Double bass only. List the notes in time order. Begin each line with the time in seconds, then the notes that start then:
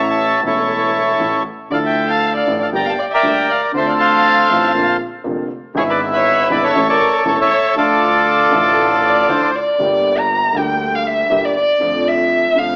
Already playing: A1
0.44 E1
1.20 A1
1.71 D2
2.48 A1
2.73 G1
3.23 D2
3.74 D2
4.50 A1
4.75 A#1
5.25 F1
5.75 G#1
6.50 G#1
6.75 A1
7.25 E1
7.76 D2
8.51 A1
9.28 D2
9.79 G1
10.56 D2
11.31 G1
11.81 F2
12.56 F2